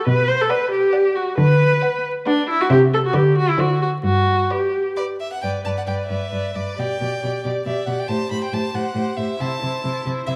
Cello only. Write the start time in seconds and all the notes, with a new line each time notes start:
0.07 B2
1.38 D3
2.70 C3
3.14 D3
3.58 D3
4.04 G2
5.43 G2
5.66 G2
5.88 G2
6.10 G2
6.32 G2
6.55 G2
6.79 B2
7.01 B2
7.23 B2
7.45 B2
7.66 B2
7.87 B2
8.09 A2
8.31 A2
8.53 A2
8.74 A2
8.95 A2
9.17 A2
9.40 C3
9.63 C3
9.84 C3
10.06 C3
10.28 C3